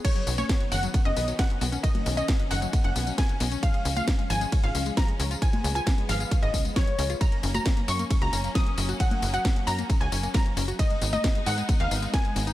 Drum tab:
CC |x---------------|----------------|----------------|----------------|
RD |x---x---x---x---|x---x---x---x---|x---x---x---x---|x---x---x---x---|
HH |xxoxxxoxxxoxxxox|xxoxxxoxxxoxxxox|xxoxxxoxxxoxxxox|xxoxxxoxxxoxxxox|
TB |x-xxx-xxx-xxx-xx|x-xxx-xxx-xx--xx|x-xxx-xxx-xxx-xx|x-xxx-xxx-xxx-xx|
SD |----o-------o---|----o-------o---|----o-------o---|----o-------o---|
CG |---o------------|-o--------------|---o------------|-o--------------|
BD |o---o---o---o---|o---o---o---o---|o---o---o---o---|o---o---o-o-o---|

CC |----------------|----------------|----------------|
RD |x---x---x---x---|x---x---x---x---|x---x---x---x---|
HH |xxoxxxoxxxoxxxox|xxoxxxoxxxoxxxox|xxoxxxoxxxoxxxox|
TB |x-xxx-xxx-xxx-xx|x-xxx-xxx-xxx-xx|x-xxx-xxx-xxx-xx|
SD |----o-------o---|----o-------o---|----o-------o---|
CG |---o------------|-o--------------|---o------------|
BD |o---o---o---o---|o---o---o---o---|o---o---o---o---|